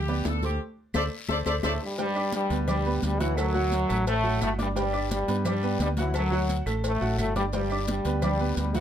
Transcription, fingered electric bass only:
Already playing: D2
0.25 D2
0.95 D2
1.29 D2
1.46 D2
1.64 D2
2.50 D2
3.03 D2
3.90 A1
4.42 G1
5.28 G2
5.79 D2
6.66 A1
7.01 A1
7.18 G1
8.05 D2
8.57 D2

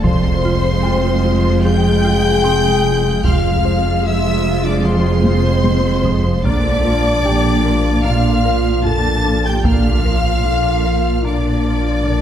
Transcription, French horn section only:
0.05 C4
1.64 G#4
3.24 F4
4.04 F4
4.64 D4
4.84 C4
6.44 D4
8.04 F4
8.85 A4
9.45 G4
9.65 F4
11.23 D4

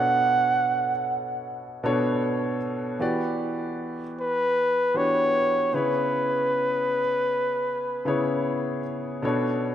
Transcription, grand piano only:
Already playing: B2 B3 D4 A4 C#5
1.84 B2 B3 D4 A4 C#5
2.99 E3 B3 F#4 G4 D5
4.94 E3 B3 D4 F#4 G4
5.73 C#3 B3 E4 G#4 C#5
8.05 C#3 B3 E4 G#4 C#5
9.22 B2 B3 D4 A4 C#5

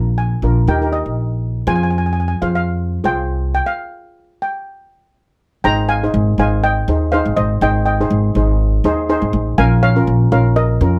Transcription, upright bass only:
Already playing: A#1
0.42 A#1
0.67 D#2
1.06 A#1
1.67 F2
2.42 F2
3.04 C2
5.64 G#1
6.14 G#1
6.38 G#1
6.88 D#2
7.26 G#1
7.37 G#1
7.61 G#1
8.10 G#1
8.35 G#1
8.84 D#2
9.22 G#1
9.33 A1
9.58 A#1
10.07 A#1
10.32 A#1
10.81 F2

